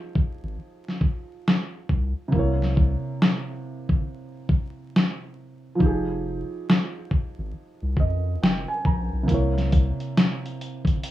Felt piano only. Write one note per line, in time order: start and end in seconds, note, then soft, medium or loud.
0.00 2.26 F3 medium
0.00 2.28 D#4 medium
0.00 2.29 G4 medium
0.00 2.31 G#4 medium
2.28 5.74 C3 medium
2.28 5.76 A#3 medium
2.35 5.78 E4 medium
2.35 5.80 C#5 medium
5.75 9.22 F3 medium
5.75 9.24 D#4 medium
5.83 9.25 G4 medium
5.83 9.27 G#4 medium
8.00 8.39 D#5 medium
8.43 8.67 G5 medium
8.68 8.84 G#5 medium
8.86 9.26 A#5 medium
9.23 11.11 C3 medium
9.23 11.11 A#3 medium
9.30 11.11 E4 medium
9.30 11.11 C#5 medium